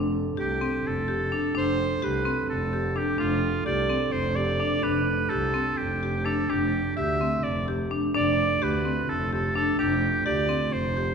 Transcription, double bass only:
0.00 0.30 F1 medium
0.38 0.78 C2 medium
0.85 1.44 F1 medium
1.55 1.95 F1 medium
2.02 2.41 C2 medium
2.49 3.08 F1 medium
3.19 3.58 F1 medium
3.65 4.05 C2 medium
4.13 4.72 F1 medium
4.84 5.23 F1 medium
5.30 5.70 C2 medium
5.77 6.38 F1 medium
6.50 6.89 F1 medium
6.97 7.37 D2 medium
7.44 8.03 F1 medium
8.16 8.54 F1 medium
8.62 9.01 D2 medium
9.08 9.67 F1 medium
9.78 10.18 F1 medium
10.25 10.65 D2 medium
10.73 11.15 F1 medium

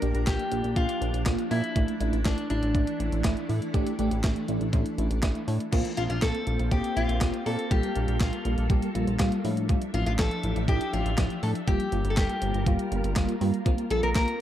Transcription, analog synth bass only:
0.02 0.13 A#1 medium
0.15 0.25 A#1 medium
0.27 0.38 A#1 loud
0.52 0.63 A#1 loud
0.64 0.75 A#1 loud
0.76 0.87 A#1 loud
1.01 1.12 A#1 loud
1.14 1.25 A#1 medium
1.26 1.37 A#1 loud
1.51 1.62 A#2 loud
1.76 1.87 A1 loud
2.01 2.11 A1 loud
2.13 2.24 A1 medium
2.26 2.36 A1 loud
2.50 2.61 A1 loud
2.63 2.73 A1 loud
2.75 2.86 A1 loud
3.00 3.11 A1 medium
3.12 3.23 A1 loud
3.25 3.35 A1 loud
3.49 3.60 A2 loud
3.74 3.85 A1 loud
3.99 4.10 A1 medium
4.11 4.22 A1 loud
4.24 4.35 A1 loud
4.49 4.59 A1 loud
4.61 4.72 A1 loud
4.73 4.84 A1 loud
4.98 5.09 A1 loud
5.11 5.21 A1 medium
5.23 5.34 A1 loud
5.48 5.59 A2 loud
5.73 5.83 A#1 loud
5.97 6.08 A#1 loud
6.10 6.21 A#1 loud
6.22 6.33 A#1 medium
6.47 6.58 A#1 loud
6.60 6.70 A#1 loud
6.71 6.82 A#1 loud
6.97 7.07 A#1 loud
7.09 7.20 A#1 medium
7.21 7.32 A#1 loud
7.46 7.57 A#2 loud
7.71 7.82 A#1 loud
7.96 8.07 A#1 loud
8.08 8.19 A#1 loud
8.21 8.31 A#1 loud
8.45 8.56 A#1 loud
8.58 8.68 A#1 loud
8.70 8.81 A#1 loud
8.95 9.06 A#1 loud
9.07 9.18 A#1 loud
9.20 9.30 A#1 loud
9.44 9.77 A2 loud
9.94 10.05 A1 loud
10.06 10.17 A1 loud
10.19 10.30 A1 loud
10.44 10.54 A1 loud
10.56 10.67 A1 loud
10.68 10.79 A1 loud
10.93 11.04 A1 medium
11.06 11.16 A1 loud
11.18 11.29 A1 loud
11.43 11.54 A2 loud
11.68 11.78 G1 loud
11.92 12.03 G1 loud
12.05 12.16 G1 loud
12.17 12.28 G1 loud
12.42 12.53 G1 loud
12.54 12.65 G1 loud
12.66 12.77 G1 loud
12.92 13.02 G1 loud
13.04 13.15 G1 loud
13.16 13.27 G1 medium
13.41 13.52 G2 loud
13.66 13.77 A#1 loud
13.91 14.01 A#1 loud
14.03 14.14 A#1 loud
14.16 14.26 A#1 loud

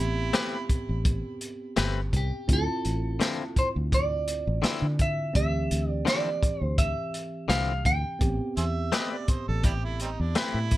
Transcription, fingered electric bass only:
0.00 0.31 A1 medium
0.89 1.22 A1 medium
1.78 2.10 G1 medium
2.13 2.30 C2 medium
2.49 2.66 D2 medium
2.85 3.18 A1 medium
3.56 muted fingered electric bass stroke soft
3.76 4.43 D2 medium
4.47 4.62 A1 medium
4.82 5.37 D3 medium
5.35 5.68 D2 medium
5.71 6.04 D2 medium
6.61 6.94 D2 medium
7.49 7.82 C2 medium
7.85 8.03 D2 medium
8.21 8.39 A1 medium
8.57 8.90 E2 medium
9.28 muted fingered electric bass stroke soft
9.49 10.16 A1 medium
10.20 10.35 E2 medium
10.54 10.77 A2 medium

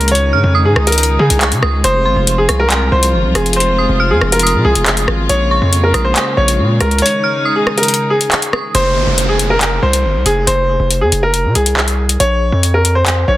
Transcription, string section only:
0.00 1.81 C#3 medium
0.00 5.25 G#3 medium
0.11 1.82 D#3 medium
0.11 1.82 D#4 medium
1.84 5.26 C3 medium
1.84 5.26 F3 medium
1.84 6.98 F4 medium
5.29 7.00 C#3 medium
5.29 8.71 G#3 medium
5.29 7.00 A#3 medium
7.02 8.73 C#3 medium
7.02 8.73 D#3 medium
7.02 8.73 D#4 medium

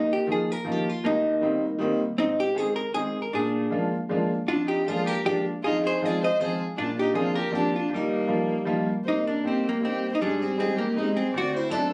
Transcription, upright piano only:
0.00 0.18 D#2 medium
0.27 0.47 D#3 medium
0.27 0.47 F3 medium
0.27 0.48 A#3 medium
0.27 0.48 D#4 medium
0.27 0.48 F4 medium
0.64 0.85 D#3 medium
0.64 0.85 F3 medium
0.64 0.85 A#3 medium
0.64 0.86 D#4 medium
0.64 0.86 F4 medium
1.04 1.33 D#2 medium
1.41 1.62 D#3 medium
1.41 1.62 G3 medium
1.41 1.62 A#3 medium
1.41 1.62 C4 medium
1.41 1.62 D#4 medium
1.79 1.99 D#3 loud
1.79 1.99 G3 medium
1.79 2.00 A#3 medium
1.79 2.00 C4 medium
1.79 2.01 D#4 loud
2.18 2.47 G#2 medium
2.55 2.75 D#3 medium
2.55 2.75 G#3 medium
2.55 2.76 C4 medium
2.55 2.76 D#4 medium
2.55 2.76 G#4 loud
2.94 3.14 D#3 medium
2.94 3.14 G#3 medium
2.94 3.14 C4 medium
2.94 3.15 D#4 medium
2.94 3.15 G#4 medium
3.33 3.62 A#2 medium
3.70 3.91 F3 medium
3.70 3.91 G#3 medium
3.70 3.91 A#3 medium
3.70 3.91 D4 medium
3.70 3.92 F4 medium
4.09 4.30 F3 medium
4.09 4.30 G#3 medium
4.09 4.30 A#3 medium
4.09 4.30 D4 medium
4.09 4.30 F4 medium
4.49 4.78 F2 medium
4.88 5.08 F3 medium
4.88 5.08 G#3 medium
4.88 5.08 A#3 medium
4.88 5.08 D4 medium
4.88 5.09 F4 medium
5.25 5.45 F3 medium
5.25 5.46 G#3 medium
5.25 5.46 A#3 medium
5.25 5.46 D4 medium
5.25 5.46 F4 medium
5.64 5.93 F2 medium
6.02 6.22 F3 medium
6.02 6.22 G#3 medium
6.02 6.22 C4 medium
6.02 6.22 D#4 medium
6.02 6.23 F4 medium
6.40 6.60 F3 medium
6.40 6.60 G#3 medium
6.40 6.60 C4 medium
6.40 6.61 D#4 medium
6.40 6.61 F4 medium
6.78 7.06 A#2 medium
7.13 7.34 F3 medium
7.13 7.34 A#3 medium
7.13 7.35 C4 medium
7.13 7.35 D4 medium
7.13 7.35 F4 medium
7.51 7.72 F3 medium
7.51 7.72 A#3 medium
7.51 7.72 C4 medium
7.51 7.72 D4 medium
7.51 7.73 F4 medium
7.89 8.19 D#2 medium
8.27 8.48 F3 medium
8.27 8.48 G3 medium
8.27 8.48 A#3 medium
8.27 8.49 D#4 medium
8.27 8.49 F4 medium
8.65 8.87 F3 medium
8.65 8.87 G3 medium
8.65 8.87 A#3 medium
8.65 8.87 D#4 medium
8.65 8.87 F4 medium
9.05 9.34 C3 soft
9.44 9.64 G3 medium
9.44 9.64 A#3 medium
9.44 9.64 C4 medium
9.44 9.65 D#4 medium
9.81 10.02 G3 medium
9.81 10.02 A#3 medium
9.81 10.02 C4 medium
9.81 10.03 D#4 medium
10.22 10.50 G#2 medium
10.58 10.78 G3 medium
10.58 10.78 G#3 medium
10.58 10.79 C4 medium
10.58 10.79 D#4 medium
10.96 11.16 G3 medium
10.96 11.16 G#3 medium
10.96 11.17 C4 medium
10.96 11.17 D#4 medium
11.34 11.62 D2 medium
11.70 11.91 F#3 medium
11.70 11.91 A3 medium
11.70 11.92 C4 medium
11.70 11.92 D4 medium

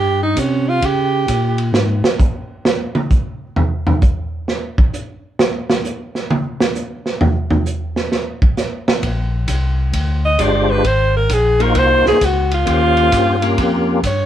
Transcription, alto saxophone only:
0.00 0.22 G4 loud
0.23 0.41 D#4 medium
0.40 0.70 C#4 medium
0.69 0.87 F4 medium
0.85 1.68 G4 medium
10.25 10.44 D#5 medium
10.42 10.72 D5 medium
10.71 10.89 B4 loud
10.87 11.16 C5 loud
11.17 11.35 A#4 medium
11.34 11.63 G#4 medium
11.62 11.80 A#4 loud
11.79 12.08 C5 loud
12.08 12.26 G#4 loud
12.25 12.53 F#4 medium
12.54 13.55 F4 loud
14.07 14.26 C#5 medium

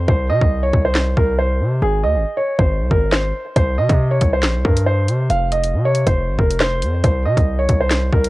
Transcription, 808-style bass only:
0.08 0.31 C2 loud
0.30 0.41 C3 loud
0.41 0.72 C2 loud
0.73 1.15 C2 loud
1.17 1.62 C2 loud
1.60 1.81 C3 loud
1.82 2.05 G#1 loud
2.04 2.17 D#2 loud
2.15 2.25 G#1 loud
2.59 2.82 G#1 loud
2.81 2.90 C2 loud
2.91 3.33 G#1 loud
3.56 3.79 C2 loud
3.78 3.89 C3 loud
3.89 4.20 C3 loud
4.21 4.45 C2 loud
4.43 4.56 A#1 loud
4.55 4.64 C2 loud
4.65 5.10 G2 loud
5.08 5.29 C3 medium
5.30 5.75 F1 loud
5.73 6.05 C3 loud
6.07 6.30 F1 loud
6.28 6.38 G#1 loud
6.39 6.84 F1 loud
6.82 7.03 F2 loud
7.04 7.27 C2 loud
7.26 7.36 C3 loud
7.37 7.68 C2 loud
7.69 8.11 C2 loud
8.13 8.29 C2 loud

